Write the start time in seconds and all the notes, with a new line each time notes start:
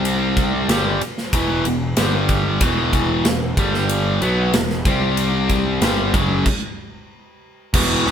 Already playing: C2 C3 G3 C4
0.05 ride
0.37 kick, ride
0.69 G1 G2 D3 G3, snare, ride
1.01 muted picked electric bass stroke, muted overdriven electric guitar stroke, ride
1.18 snare
1.33 E1 E2 B2 E3, kick, ride
1.65 E1 E2 B2, ride
1.97 G1 G2 D3 G3, snare, ride
2.29 kick, ride
2.61 E1 E2 B2 E3, kick, ride
2.93 kick, ride
3.25 E1 E2 B2, snare, ride
3.57 G1 G2 D3 G3, kick, ride
3.74 snare
3.89 ride
4.21 B1 B2 F#3 B3, ride
4.53 E1 E2 B2, snare, ride
4.70 snare
4.85 C2 C3 G3 C4, kick, ride
5.17 ride
5.49 kick, ride
5.82 G1 G2 D3 G3, snare, ride
6.14 F#1 F#2 C#3 F#3, kick, ride
6.46 kick, crash
7.74 E1 E2 B2 E3, kick, crash
8.06 E1 E2 B2 E3, snare